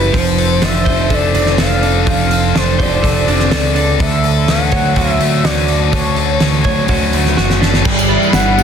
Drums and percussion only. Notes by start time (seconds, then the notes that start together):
0.14 kick, open hi-hat
0.38 open hi-hat
0.62 snare, open hi-hat
0.86 kick, open hi-hat
1.10 kick, open hi-hat
1.35 open hi-hat
1.46 snare
1.58 snare, open hi-hat
1.83 open hi-hat
2.07 kick, open hi-hat
2.31 open hi-hat
2.56 snare, open hi-hat
2.80 kick, open hi-hat
3.04 kick, open hi-hat
3.28 open hi-hat
3.39 snare
3.52 snare, open hi-hat
3.76 open hi-hat
4.00 kick, open hi-hat
4.24 open hi-hat
4.48 snare, open hi-hat
4.72 kick, open hi-hat
4.96 kick, open hi-hat
5.21 open hi-hat
5.45 snare, open hi-hat
5.68 open hi-hat
5.93 kick, open hi-hat
6.16 open hi-hat
6.40 snare, open hi-hat
6.64 kick, open hi-hat
6.88 kick, open hi-hat
7.13 open hi-hat
7.25 snare
7.37 snare
7.50 snare
7.62 snare
7.74 snare
7.85 kick, crash
7.99 tambourine
8.23 tambourine
8.33 snare, tambourine, crash
8.59 tambourine